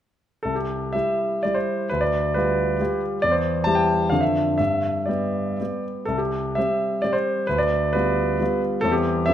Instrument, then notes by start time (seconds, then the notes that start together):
grand piano
0.43 C2 A4
0.55 G4
0.93 G3 E4 G4 E5
1.43 G3 E4 G4 D5
1.54 C5
1.89 D2 B4
2.01 D5
2.34 G3 F4 G4 B4
2.80 G3 F4 G4
3.22 E2 D5
3.31 C5
3.64 G3 E4 G4 A5
3.75 G5
4.10 F2 D3 D4 A4 F5
4.21 E5
4.58 G2 E5
5.06 G3 B3 G4 D5
5.61 G3 B3 G4
6.05 C2 A4
6.18 G4
6.55 G3 C4 G4 E5
7.02 G3 C4 G4 D5
7.13 C5
7.47 D2 B4
7.58 D5
7.93 G3 B3 F4 B4
8.41 G3 B3 F4
8.81 E2 G3 C4 E4 A4
8.92 G4
9.26 F2 F3 D4 A4 E5